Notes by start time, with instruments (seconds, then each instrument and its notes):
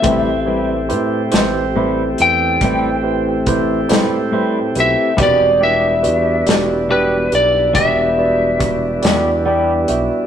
Already playing: lead electric guitar E5
0.02 analog synth bass A1, clean electric guitar A2 G3 C4 E4, tonewheel organ A3 C4 E4 G4, tine electric piano E4 G4 B4 C5, kick, closed hi-hat
0.46 clean electric guitar G3 C4 E4, tine electric piano E4 G4 B4 C5
0.89 analog synth bass A2, tine electric piano E4 G4 B4 C5, closed hi-hat
1.32 analog synth bass A1, tine electric piano E4 G4 B4 C5, snare, closed hi-hat
1.76 clean electric guitar A2 G3 C4 E4, tine electric piano E4 G4 B4 C5
2.18 analog synth bass E2, tine electric piano E4 G4 B4 C5, lead electric guitar G5, closed hi-hat
2.61 analog synth bass A1, clean electric guitar A2 G3 C4 E4, tine electric piano E4 G4 B4 C5, kick, closed hi-hat
3.03 tine electric piano E4 G4 B4 C5
3.46 tine electric piano E4 G4 B4 C5, kick, closed hi-hat
3.89 analog synth bass A2, clean electric guitar G3 C4 E4, tine electric piano E4 G4 B4 C5, snare, closed hi-hat
4.31 clean electric guitar A2 G3 C4 E4, tine electric piano E4 G4 B4 C5
4.75 analog synth bass B1, tine electric piano E4 G4 B4 C5, closed hi-hat
4.80 lead electric guitar E5
5.17 analog synth bass E1, clean electric guitar E3 B3 D4 G4, tonewheel organ G3 G#3 C4 D#4, tine electric piano F#4 G4 B4 D5, kick, closed hi-hat
5.23 lead electric guitar D5
5.61 tonewheel organ G3 B3 D4 E4, clean electric guitar B3 D4 G4, tine electric piano F#4 G4 B4 D5, lead electric guitar E5
6.03 analog synth bass E2, tine electric piano F#4 G4 B4 D5, closed hi-hat
6.46 analog synth bass E1, tine electric piano F#4 G4 B4 D5, snare, closed hi-hat
6.89 clean electric guitar E3 B3 D4 G4, tine electric piano F#4 G4 B4 D5, lead electric guitar B4
7.32 analog synth bass B1, tine electric piano F#4 G4 B4 D5, lead electric guitar D5, closed hi-hat
7.73 analog synth bass E1, clean electric guitar E3 B3 D4 G4, tine electric piano F#4 G4 B4 D5, lead electric guitar E5, kick, closed hi-hat
8.18 tine electric piano F#4 G4 B4 D5
8.59 tine electric piano F#4 G4 B4 E5, kick, closed hi-hat
9.02 analog synth bass E2, tine electric piano F#4 G4 B4 D5, clean electric guitar G4, snare, closed hi-hat
9.06 clean electric guitar B3 D4
9.44 clean electric guitar E3 B3 D4 G4, tine electric piano G4 B4 D5 F#5 G5, lead electric guitar D5
9.88 analog synth bass B1, tine electric piano F#4 G4 B4 E5, closed hi-hat